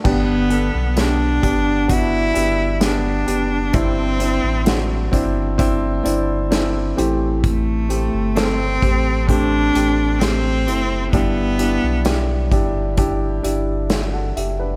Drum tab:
CC |x-------|--------|--------|--------|
HH |-xxxxxxx|xxxxxxxx|xxxxxxxx|xxxxxxxx|
SD |--o---o-|--o---o-|--o---o-|--o---o-|
BD |o--oo---|o--oo---|o--oo---|o--oo---|